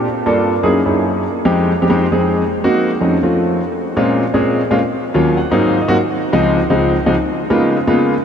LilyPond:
\new Staff \with { instrumentName = "Grand piano" } { \time 4/4 \key f \minor \tempo 4 = 203 << { r1 | r1 | r1 | \key bes \minor r1 |
r4. aes''8 ges''4 f''8 ees''8 | r1 | r1 | } \\ { r8. <g, bes d' f' a'>8. r8 <ges, bes des' ees' fes' aes'>8 r16 <ges, bes des' ees' fes' aes'>4~ <ges, bes des' ees' fes' aes'>16 | r8. <f, aes c' ees' g'>8. r8 <f, aes c' ees' g'>16 <f, aes c' ees' g'>8 r16 <f, aes c' ees' aes'>4 | r8. <bes c' ees' ges'>8. r8 <f, a c' des' ees'>8 r16 <f, a c' des' f'>4~ <f, a c' des' f'>16 | r4 r16 <bes, aes c' des' f'>8. r8 <bes, aes c' des' aes'>4 r16 <bes, aes c' des' f'>16 |
r4 r16 <ees, ges bes des' f'>8. r8 <aes, ges bes c' ees'>4 r16 <aes, ges bes c' ges'>16 | r4 r16 <des, f aes c' ees'>8. r8 <des, f aes c' ees'>4 r16 <des, f aes c' ees'>16 | r4 r16 <des aes bes ces' ees' f'>8. r8 <des aes bes ces' ees' f'>4 r8 | } >> }